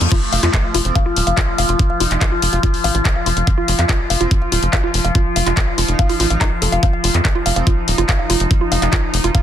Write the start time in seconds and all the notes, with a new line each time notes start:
Already playing: F3 A3, reverse cymbal
0.01 F2, closed hi-hat
0.12 F3 F4, kick, closed hi-hat, crash
0.33 F1 F5, open hi-hat
0.43 F2 F4, clap, closed hi-hat
0.54 kick, clap, closed hi-hat
0.64 F5
0.74 F1 F4, open hi-hat
0.85 F1 C4, closed hi-hat
0.95 F5, kick, closed hi-hat
1.06 F4
1.16 D#1, open hi-hat
1.27 F#1 F5, closed hi-hat
1.37 F4, kick, clap, closed hi-hat
1.58 F1 F5, open hi-hat
1.69 F1 F4, closed hi-hat
1.79 kick, closed hi-hat
1.90 F5
2.00 F1 D#4 F4, open hi-hat
2.11 F1, clap, closed hi-hat
2.21 F5, kick, clap, closed hi-hat
2.32 F4
2.42 F1, open hi-hat
2.53 F1 F4 F5, closed hi-hat
2.63 F4, kick, closed hi-hat
2.74 open hi-hat
2.84 A1 F5, open hi-hat
2.95 A1 F4, closed hi-hat
3.05 kick, clap, closed hi-hat
3.16 F5
3.26 F1 F4, open hi-hat
3.37 F1, closed hi-hat
3.47 F5, kick, closed hi-hat
3.58 F4
3.68 F1, open hi-hat
3.79 F2 F5, clap, closed hi-hat
3.89 F4, kick, clap, closed hi-hat
4.10 F1 F5, open hi-hat
4.21 F1 C4 F4, closed hi-hat
4.31 kick, closed hi-hat
4.42 F5
4.52 D#1 F4, open hi-hat
4.63 F#1, closed hi-hat
4.73 F4 F5, kick, clap, closed hi-hat
4.84 F4
4.94 F1, open hi-hat
5.05 F1 F5, closed hi-hat
5.15 F4, kick, closed hi-hat
5.36 F1 F5, open hi-hat
5.47 F1 F4, clap, closed hi-hat
5.57 kick, clap, closed hi-hat
5.67 F5
5.78 F1 F4, open hi-hat
5.88 F1 D#4, closed hi-hat
5.99 F5, kick, closed hi-hat
6.09 F4, open hi-hat
6.20 A1 F4, open hi-hat
6.30 A1 F5, closed hi-hat
6.41 D#4, kick, clap, closed hi-hat
6.62 F1 A4, open hi-hat
6.72 F1 F5, closed hi-hat
6.83 D#4 F5, kick, closed hi-hat
6.93 F5
7.04 F1 F4, open hi-hat
7.14 F2, clap, closed hi-hat
7.25 kick, clap, closed hi-hat
7.35 F4
7.46 F1 F5, open hi-hat
7.56 F1 C4 F5, closed hi-hat
7.67 F4, kick, closed hi-hat
7.88 D#1, open hi-hat
7.98 F#1 F4, closed hi-hat
8.09 F5, kick, clap, closed hi-hat
8.19 F5
8.30 F1 F4, open hi-hat
8.40 F1, closed hi-hat
8.51 kick, closed hi-hat
8.61 F4
8.72 F1 D#4 F5, open hi-hat
8.82 F1 F5, clap, closed hi-hat
8.93 F4, kick, clap, closed hi-hat
9.14 F1, open hi-hat
9.24 F1 F4, closed hi-hat
9.35 F4 F5, kick, closed hi-hat